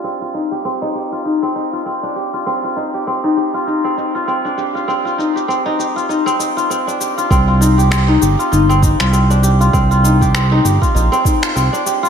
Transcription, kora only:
X:1
M:4/4
L:1/16
Q:"Swing 16ths" 1/4=99
K:Cm
V:1 name="Kora"
C F E G C E G F E C E F C D G F | C F E G C E G F E C E F C D G F | C F E G C E G F E C E F C D G F | C F E G C E G F E C E F C D G F |
C F E G C E G F E C E F C D G F |]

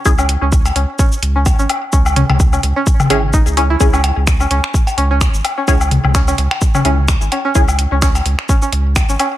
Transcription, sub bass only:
X:1
M:4/4
L:1/16
Q:"Swing 16ths" 1/4=128
K:C#m
V:1 name="Sub bass" clef=bass
C,,3 C,,3 C,, z3 C,,3 G,,, z2 | C,,3 C,,3 C,, z3 G,,,3 C,,3 | C,,3 C,,3 C,, z3 C,,3 G,,, z2 | C,,3 C,,3 C,, z3 C,,3 G,,, z2 |
C,,3 C,,3 C,, z3 C,,3 G,,, z2 |]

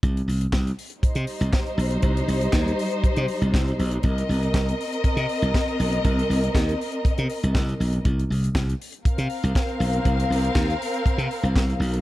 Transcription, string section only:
X:1
M:4/4
L:1/8
Q:1/4=120
K:Cm
V:1 name="String section"
z4 [G,Ec]4- | [G,Ec]8 | [CBe]8- | [CBe]8 |
z4 [CBf]4- | [CBf]8 |]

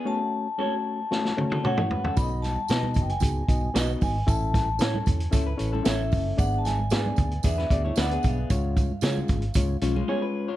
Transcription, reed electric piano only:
X:1
M:4/4
L:1/16
Q:1/4=114
K:F#m
V:1 name="Reed electric piano"
[A,CFc]3 z [G,A,CFc]3 z [A,CFc]2 [A,CFc]2 [A,CFc]3 z | [B,^DF=d^d]3 z [B,DFcd]3 z [B,DFG]2 [B,DFd]2 [B,DF=d^d]3 z | [CEAe]3 z [CEAc]3 z [CEAe]2 [CEAc]2 [CEAe]3 z | [^A,B,DGd]3 z [A,B,DGd]3 z [B,DGd]2 [B,DGe]2 [B,DGcd]3 z |
[G,C^Ec]3 z [G,CEG]3 z [G,CEc]2 [G,CEc]2 [G,CEc]3 z |]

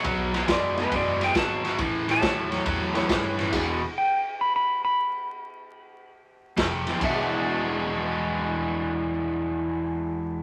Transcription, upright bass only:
X:1
M:4/4
L:1/8
Q:"Swing" 1/4=138
K:Emix
V:1 name="Upright bass" clef=bass
B,,,2 F,,2 F,,2 G,,,2 | A,,,2 E,,2 E,,2 =G,,2 | E,,,2 z6 | z6 =F,,,2 |
E,,,8- | E,,,8 |]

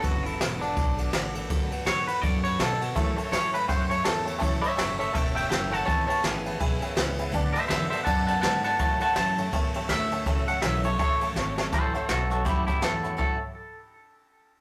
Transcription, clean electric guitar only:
X:1
M:4/4
L:1/8
Q:"Swing" 1/4=164
K:A
V:1 name="Clean electric guitar"
F E2 D4- D- | D z c B d c A z | z2 c B =c ^c A z | z [ce] [ce] [ce] [e=g] [eg] [eg] [fa] |
[ca] [ca] g2 z4 | z [=ce] [ce] [ce] [fa] [fa] [fa] [fa] | [fa] [fa] a2 z2 e2- | e f e c c4 |
[A=c] [Ac] [FA] [FA] [E=G] [EG] A2 | A z6 z |]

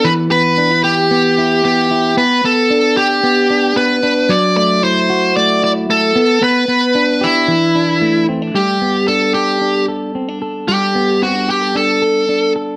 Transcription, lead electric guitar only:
X:1
M:4/4
L:1/8
Q:1/4=113
K:G
V:1 name="Lead electric guitar"
B B2 G3 G2 | B A2 G3 B2 | d d c2 d d A2 | B3 E4 z |
G2 A G2 z3 | G2 F G A3 z |]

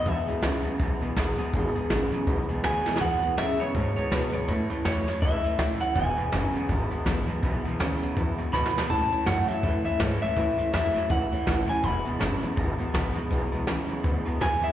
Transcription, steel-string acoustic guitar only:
X:1
M:4/4
L:1/8
Q:"Swing" 1/4=163
K:E
V:1 name="Steel-string acoustic guitar"
[E,,B,,E,G,B,G] [E,G,B,G] [E,,B,,E,G,B,G] [E,G,B,G] [E,G,B,G] [E,G,B,G] [E,,B,,E,G,B,G] [E,G,B,G] | [E,,B,,E,G,B,G] [E,G,B,G] [E,,B,,E,G,B,G] [E,G,B,G] [E,G,B,G] [E,G,B,G] [E,,B,,E,G,B,G] [E,G,B,G] | [E,,B,,E,G,B,G] [E,G,B,G] [E,,B,,E,G,B,G] [E,G,B,G] [E,G,B,G] [E,G,B,G] [E,,B,,E,G,B,G] [E,G,B,G] | [A,,E,A,CE] [A,CE] [A,,E,A,CE] [A,CE] [E,A,CE] [A,CE] [A,,E,A,CE] [A,CE] |
[E,,B,,E,G,B,E] [E,G,B,E] [E,,B,,E,G,B,E] [E,G,B,E] [E,G,B,E] [E,G,B,E] [E,,B,,E,G,B,E] [E,G,B,E] | [E,,B,,E,G,B,E] [E,G,B,E] [E,,B,,E,G,B,E] [E,G,B,E] [E,G,B,E] [E,G,B,E] [E,,B,,E,G,B,E] [E,G,B,E] | [A,,E,A,CE] [A,CE] [A,,E,A,CE] [A,CE] [E,A,CE] [A,CE] [A,,E,A,CE] [A,CE] | [A,,E,A,CE] [A,CE] [A,,E,A,CE] [A,CE] [E,A,CE] [A,CE] [A,,E,A,CE] [A,CE] |
[E,,B,,E,G,B,E] [E,G,B,E] [E,,B,,E,G,B,E] [E,G,B,E] [E,G,B,E] [E,G,B,E] [E,,B,,E,G,B,E] [E,G,B,E] | [E,,B,,E,G,B,E] [E,G,B,E] [E,,B,,E,G,B,E] [E,G,B,E] [E,G,B,E] [E,G,B,E] [E,,B,,E,G,B,E] [E,G,B,E] |]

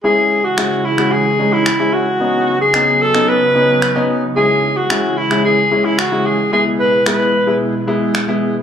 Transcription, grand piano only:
X:1
M:4/4
L:1/16
Q:1/4=111
K:C#m
V:1 name="Grand piano"
[G,CE]2 z2 [G,CE]2 z [G,CF]2 z [G,CD]2 z [G,CE]2 z | [B,CD]2 z2 [B,CD]2 z [B,CD]2 z [B,CD]2 z [B,CD]2 z | [G,CE]2 z2 [G,CE]2 z [G,CE]2 z [G,CE]2 z [G,CE]2 z | [G,B,E]2 z2 [G,B,E]2 z [G,B,E]2 z [G,B,E]2 z [G,B,E]2 z |]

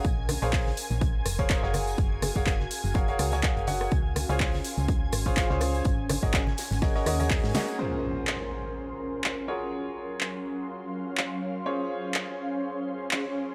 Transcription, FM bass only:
X:1
M:4/4
L:1/16
Q:"Swing 16ths" 1/4=124
K:Db
V:1 name="FM bass" clef=bass
B,,,3 B,,,3 z B,,,3 F,,,3 G,,,3 | G,,,3 G,,,3 z G,,,3 D,,3 G,,,3 | D,,3 D,,3 z D,,3 A,,,3 D,,3 | A,,,3 A,,,3 z A,,,3 E,,3 A,, z2 |
z16 | z16 | z16 |]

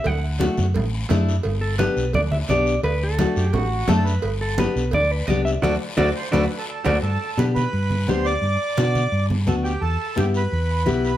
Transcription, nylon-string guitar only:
X:1
M:4/4
L:1/8
Q:1/4=172
K:G
V:1 name="Nylon-string guitar"
z2 [A,DF] z3 [A,DE] z | z2 [B,DG] z3 [B,DG] z | z2 [A,DF] z3 [A,DA] z | z2 [B,DG] z3 [B,DG] z |
[A,DF] z [A,DF] z [A,DF] z2 [A,DF] | z2 [B,DG] z3 [B,DG] z | z2 [B,DF] z3 [B,DF] z | z2 [B,EG] z3 [B,EG] z |]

